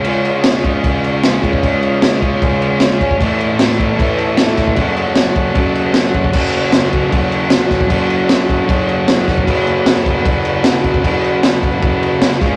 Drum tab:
CC |x-x-x-x-x-x-x-x-|x-x-x-x-x-x-x-x-|x-x-x-x-x-x-x-x-|x-x-x-x-x-x-x-x-|
SD |----oo------o---|----o-------o---|----oo------o-o-|----oo------o---|
BD |------o-o-----oo|o-----o-o-----oo|o-----o-o-----oo|o-----o-o-----oo|

CC |x-x-x-x-x-x-x-x-|x-x-x-x-x-x-x-x-|x-x-x-x-x-x-x-x-|x-x-x-x-x-x-x-x-|
SD |----o-------o-o-|----oo------o-o-|----oo------o---|----o-------o-o-|
BD |o-----o-o-----oo|o-----o-o-----oo|o-----o-o-----oo|o-----o-o-----o-|